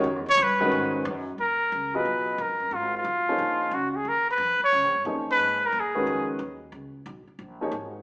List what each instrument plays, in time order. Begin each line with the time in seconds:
0.04 upright bass F#2
0.16 upright bass E2
0.26 upright bass C#2, trumpet C#5
0.37 upright bass G2
0.43 trumpet B4
0.60 upright piano D#3 G#3 C#4 F#4 B4
0.72 upright bass G#2
1.05 upright bass F#2
1.38 upright bass D#2, trumpet A#4
1.72 upright bass C#2
1.94 upright piano F#3 B3 F4 G#4 D#5, trumpet B4
2.05 upright bass B1
2.38 upright bass A#1, trumpet A#4
2.49 upright bass G#1
2.60 upright bass D#1
2.71 upright bass G#1, trumpet F4
2.97 trumpet F4
3.04 upright bass B1
3.26 upright piano F3 A#3 D#4 G#4 C#5, muted upright bass stroke
3.38 upright bass A#1
3.71 upright bass C#2, trumpet F#4
3.91 trumpet F#4
3.96 trumpet G#4
4.05 upright bass D#2, trumpet A#4
4.31 trumpet B4
4.38 upright bass F2
4.60 muted upright bass stroke
4.64 trumpet C#5
4.73 upright bass C#2
4.83 upright bass A#1
4.94 upright bass G#1
5.05 upright bass F#2, upright piano A#2 F3 D#4 G#4 C#5
5.31 trumpet B4
5.39 upright bass G#2
5.66 trumpet A#4
5.72 upright bass A#2
5.80 trumpet G#4
5.95 upright piano D#3 G#3 C#4 F#4 B4
6.07 upright bass F2
6.39 upright bass D#2
6.72 upright bass C#2
7.06 upright bass B1
7.28 muted upright bass stroke
7.39 upright bass A#1
7.61 upright piano F3 A#3 D#4 G#4 C#5
7.72 upright bass G#1